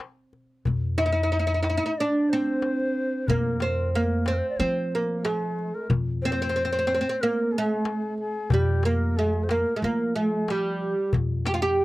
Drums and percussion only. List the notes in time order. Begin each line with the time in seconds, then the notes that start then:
0.00 darbuka tek
0.33 darbuka ka
0.65 darbuka dum
0.98 darbuka tek
1.64 darbuka tek
2.29 darbuka ka
2.46 darbuka ka
2.62 darbuka tek
2.80 darbuka ka
3.28 darbuka dum
3.60 darbuka tek
4.26 darbuka tek
4.92 darbuka ka
5.08 darbuka ka
5.25 darbuka tek
5.42 darbuka ka
5.59 darbuka ka
5.90 darbuka dum
6.87 darbuka tek
7.53 darbuka ka
7.70 darbuka ka
7.85 darbuka tek
8.02 darbuka ka
8.18 darbuka ka
8.50 darbuka dum
8.83 darbuka tek
9.33 darbuka ka
9.49 darbuka tek
9.66 darbuka ka
10.16 darbuka ka
10.48 darbuka tek
10.65 darbuka ka
10.81 darbuka ka
11.13 darbuka dum
11.46 darbuka tek